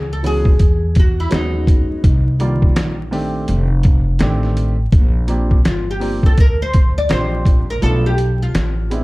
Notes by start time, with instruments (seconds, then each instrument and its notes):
Already playing: upright bass C#2, oud G#4
0.13 oud A4
0.23 upright piano E3 G#3 B3 C#4 F#4, oud G#4, open hi-hat
0.45 kick
0.59 upright bass E2, kick, closed hi-hat
0.95 kick, closed hi-hat
0.99 oud F#4
1.20 oud E4
1.30 upright bass D#2, upright piano F#3 G#3 B3 C#4 F#4, snare, closed hi-hat
1.34 oud D#4
1.67 kick, closed hi-hat
1.90 muted upright bass stroke
2.04 upright bass C2, kick, closed hi-hat
2.39 upright piano D3 G3 A#3 F4 D5, closed hi-hat
2.45 upright piano D#3
2.62 kick
2.76 upright bass A#1, snare, closed hi-hat
3.11 upright piano D#3 A3 C4 D4 G4, open hi-hat
3.48 upright bass F1, closed hi-hat
3.83 kick, closed hi-hat
4.19 upright bass A1, upright piano D#3 A3 C4 D4 G4, snare, closed hi-hat
4.43 snare
4.57 closed hi-hat
4.92 upright bass A#1, kick, closed hi-hat
5.28 upright piano F3 A#3 C4 D4 G4, closed hi-hat
5.51 kick
5.65 upright bass G1, oud F4, snare, closed hi-hat
5.91 oud G4
6.00 upright piano F3 A#3 C4 D4 G4, open hi-hat
6.23 oud A4, kick
6.38 upright bass D2, oud A#4, kick, closed hi-hat
6.62 oud C5
6.73 kick, closed hi-hat
6.98 oud D5
7.09 upright bass A#1, upright piano F3 A#3 C4 D4 F4, oud C5, snare, closed hi-hat
7.18 upright piano G4
7.45 kick, closed hi-hat
7.70 oud A#4
7.81 upright bass B1, upright piano F3 A3 B3 D4 F4, oud A4, closed hi-hat
8.06 oud G4
8.18 closed hi-hat
8.42 oud F4
8.55 upright bass A1, snare, closed hi-hat
8.90 upright piano G#3 B3 C4 D4 E4, closed hi-hat